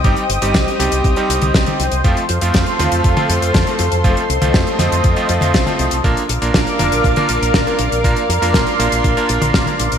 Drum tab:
HH |xxxxxxxxxxxxxxxx|xxxxxxxxxxxxxxxx|xxxxxxxxxxxxxxxx|xxxxxxxxxxxxxxxx|
SD |----o-------o---|----o-------o---|----o-o-----o---|----o-------o---|
T1 |-----------o-o--|------o--o--o---|---o--o----o-o--|------o--o--o---|
BD |o---o---o---o---|o---o---o---o---|o---o---o---o---|o---o---o---o---|

HH |xxxxxxxxxxxxxxxx|
SD |----o-------o---|
T1 |-----------o-o--|
BD |o---o---o---o---|